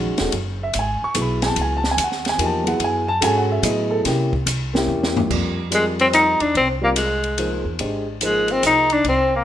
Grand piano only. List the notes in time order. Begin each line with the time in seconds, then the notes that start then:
Already playing: D#3 G#3 C#4 F#4
0.18 G#3 C#4 F#4 A4
0.63 E5
0.79 G#5
1.04 C#6
1.14 F#3 B3 E4 G#4
1.22 B5
1.47 A5
1.61 G#5
1.77 A5
1.91 G#5
2.04 F#5
2.29 G#5
2.38 F3 A#3 D#4 G4
2.45 A5
2.64 F#3 B3 E4 G#4 F#5
2.84 G#5
3.08 A5
3.21 C#4 F#4 G#4 A4 G#5
3.38 F#5
3.52 E5
3.63 F#3 B3 E4 G#4 D#5
3.91 A4
4.05 A#3 C#4 E4 G4
4.74 A#3 C#4 E4 G4
5.31 G3 C4 F4 A#4 D5
5.70 G3 C4 F4 A#4 D5
6.81 G3 C4 F4 A#4 D5
7.38 F3 A#3 D#4 G#4 C5
7.80 G#3 D4 G4 C5 D#5
8.21 F3 A#3 D#4 G#4 C5